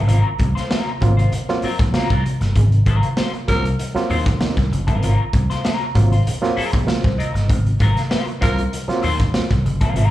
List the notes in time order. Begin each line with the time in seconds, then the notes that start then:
0.07 G#1 F#3 C4 F4 A#4, closed hi-hat, muted conga
0.26 C4 F4
0.38 C2 C4 G#4, muted clean electric guitar stroke, kick, closed hi-hat, muted conga
0.55 F#3 C4 F4 C5, snare, closed hi-hat
0.69 F#3 C4 F4 A#4, snare, high conga
1.00 G#1 F#3 A#3 C4 F4, muted clean electric guitar stroke, kick, closed hi-hat, muted conga
1.17 F#3 C4 F4 C5, closed hi-hat
1.32 closed hi-hat, muted conga, low conga
1.48 F#3 A#3 C4 F4, muted clean electric guitar stroke, snare
1.62 F#3 C4 F4 A#4, muted slap bass stroke, open hi-hat
1.79 B1, muted clean electric guitar stroke, kick, snare, closed hi-hat
1.93 F#3 A#3 C4 F4 A#4, muted slap bass stroke, snare, high conga
2.10 C2, kick, closed hi-hat, high conga
2.25 C4 F#4, muted clean electric guitar stroke, closed hi-hat
2.41 G1, muted clean electric guitar stroke, snare, closed hi-hat
2.55 G#1 C4 G#4, kick, closed hi-hat
2.71 C4 D#4, closed hi-hat
2.86 G#1 F#3 C4 F4 A#4, kick, closed hi-hat, muted conga
3.03 closed hi-hat
3.17 F#3 C4 F4 C5, snare, high conga
3.34 muted clean electric guitar stroke, closed hi-hat
3.48 C2 F#3 A#3 C4 F4 A#4, kick, snare, closed hi-hat, muted conga, low conga
3.65 muted clean electric guitar stroke, closed hi-hat
3.79 closed hi-hat, muted conga
3.95 F#3 A#3 C4 F4, muted slap bass stroke, muted clean electric guitar stroke, snare, closed hi-hat
4.09 D#2 F#3 C4 F4 C5, open hi-hat, low conga
4.26 muted clean electric guitar stroke, kick, snare, closed hi-hat
4.40 F#3 A#3 C4 D#4, snare, high conga
4.57 C2, muted clean electric guitar stroke, kick, snare, closed hi-hat, high conga
4.71 F#1 C4 F4, closed hi-hat
4.87 G1 F#3 C4 F4 A#4, kick, closed hi-hat
5.01 G#1 F#3 C4 F4 A#4, closed hi-hat
5.17 C4 F4
5.33 C2 C4 F4, muted clean electric guitar stroke, kick, closed hi-hat, muted conga
5.50 F#3 C4 F4 C5, snare, closed hi-hat
5.64 F#3 C4 F4 A#4, snare, high conga
5.94 G#1 F#3 A#3 C4 F4, muted clean electric guitar stroke, kick, closed hi-hat, muted conga
6.12 F#3 C4 F4 C5, closed hi-hat
6.27 closed hi-hat, muted conga, low conga
6.42 F#3 A#3 C4 F4, muted clean electric guitar stroke, snare, closed hi-hat
6.56 F#3 C4 F4 G#4 A#4, muted slap bass stroke, open hi-hat
6.72 B1, muted clean electric guitar stroke, kick, snare, closed hi-hat
6.87 F#3 A#3 C4 F4 C5, muted slap bass stroke, muted clean electric guitar stroke, snare, high conga
7.04 C2, kick, snare, high conga
7.18 F#3 C4 F4 A#4 D#5, closed hi-hat
7.34 G1, muted clean electric guitar stroke, snare, closed hi-hat
7.48 G#1 C4 D#4, kick, closed hi-hat
7.65 C4 F4, closed hi-hat
7.79 G#1 F#3 C4 F4 A#4, kick, closed hi-hat, muted conga
7.97 snare, closed hi-hat
8.10 F#3 C4 F4 C5, snare, high conga
8.27 muted clean electric guitar stroke, closed hi-hat
8.41 C2 F#3 A#3 C4 F4 A#4, kick, snare, closed hi-hat, muted conga, low conga
8.57 muted clean electric guitar stroke, closed hi-hat
8.73 closed hi-hat, muted conga
8.88 F#3 A#3 C4 F4, muted clean electric guitar stroke, muted slap bass stroke, snare, closed hi-hat
9.02 D#2 F#3 C4 F4 C5, open hi-hat, low conga
9.19 muted clean electric guitar stroke, kick, snare, closed hi-hat
9.33 F#3 A#3 C4 F4, muted clean electric guitar stroke, snare, high conga
9.49 C2, muted clean electric guitar stroke, kick, snare, closed hi-hat, high conga
9.63 F#1 C4 G#4, closed hi-hat
9.81 G1 F#3 C4 F4 A#4, kick, closed hi-hat
9.94 G#1 F#3 C4 F4 A#4, closed hi-hat